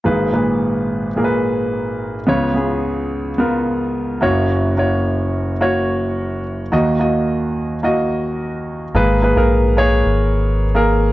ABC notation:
X:1
M:4/4
L:1/16
Q:1/4=108
K:G#m
V:1 name="Grand piano"
[A,GB]2 [A,,GB]4- [A,,GB] z [A,,GAB]6- [A,,GAB] z | [B,^Ec]2 [B,EG]4- [B,EG] z [B,EA]6 [A,Fc]2- | [A,Fc]2 [A,Fc]4- [A,Fc] z [A,Fc]6- [A,Fc] z | [A,Fd]2 [A,Fd]4- [A,Fd] z [A,Fd]6- [A,Fd] z |
[A,GB]2 [A,GB] [A,GA]3 [A,Gc]6 z [A,GA]3 |]
V:2 name="Grand piano" clef=bass
[G,,,G,,]16 | [C,,C,]12- [C,,C,]2 [F,,,F,,]2- | [F,,,F,,]12- [F,,,F,,]2 z2 | [D,,D,]16 |
G,,6 z8 z2 |]
V:3 name="Analog synth bass" clef=bass
z16 | z16 | z16 | z16 |
G,,,3 A,,,4- A,,, G,,,8 |]